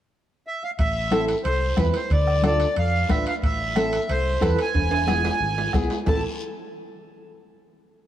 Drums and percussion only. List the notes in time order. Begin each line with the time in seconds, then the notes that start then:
0.79 bombo low, high conga, high timbale, long guiro
1.12 bombo rim, high conga, high timbale, short guiro
1.28 high timbale, short guiro
1.44 high conga, high timbale, long guiro
1.77 bombo low, bombo rim, high conga, high timbale, low timbale, short guiro
1.94 high timbale, short guiro
2.10 bombo low, high conga, high timbale, long guiro
2.27 bombo rim
2.43 bombo rim, high conga, high timbale, short guiro
2.60 high timbale, short guiro
2.76 high conga, high timbale, long guiro
3.09 bombo low, bombo rim, high conga, high timbale, short guiro
3.26 high timbale, short guiro
3.42 bombo low, high conga, high timbale, long guiro
3.76 bombo rim, high conga, high timbale, short guiro
3.92 high timbale, short guiro
4.09 high conga, high timbale, long guiro
4.42 bombo low, bombo rim, high conga, high timbale, low timbale, short guiro
4.59 high timbale, short guiro
4.74 bombo low, high conga, high timbale, long guiro
4.91 high timbale
5.08 bombo rim, high conga, low timbale, short guiro
5.25 low timbale, short guiro
5.41 high conga, long guiro
5.58 low timbale
5.73 bombo low, bombo rim, high conga, low timbale, short guiro
5.90 low timbale, short guiro
6.06 bombo low, low conga, low timbale, long guiro